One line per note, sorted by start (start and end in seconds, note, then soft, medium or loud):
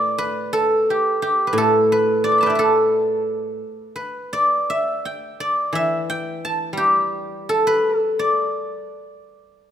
0.00 0.85 A2 medium
0.00 0.11 D4 medium
0.00 0.73 G4 medium
0.00 0.52 A4 medium
0.00 0.18 B4 medium
0.00 1.68 D5 medium
0.18 1.47 B4 medium
0.53 1.57 A4 medium
0.90 1.22 G4 medium
1.22 3.58 G4 medium
1.47 1.92 B4 medium
1.53 3.60 A2 medium
1.58 2.58 A4 medium
1.92 2.42 B4 medium
2.24 2.49 D5 medium
2.32 3.54 D6 soft
2.38 3.85 A5 soft
2.38 3.73 B5 soft
2.43 2.55 B4 medium
2.43 4.01 G5 soft
2.47 4.32 D5 soft
2.47 4.19 E5 soft
2.55 4.78 A4 medium
2.55 3.95 B4 soft
3.96 6.00 B4 medium
4.33 5.40 D5 medium
4.70 5.75 E5 medium
5.05 6.09 G5 medium
5.40 7.25 D5 medium
5.73 7.79 E3 medium
5.73 7.47 E5 medium
6.10 7.65 G5 medium
6.45 7.89 A5 medium
6.73 8.85 G3 soft
6.77 9.13 G4 medium
7.49 7.97 A4 medium
7.67 7.97 B4 medium
7.97 9.71 A4 medium
8.19 9.71 D5 medium